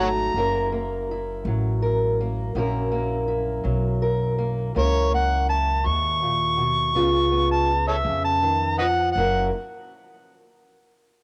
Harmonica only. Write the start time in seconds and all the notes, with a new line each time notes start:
0.00 A#5
4.78 C#5
5.15 F#5
5.50 A5
5.86 C#6
7.51 A5
7.88 A4 C#5 E5
8.25 A5
8.78 B4 D#5 F#5
9.12 F#5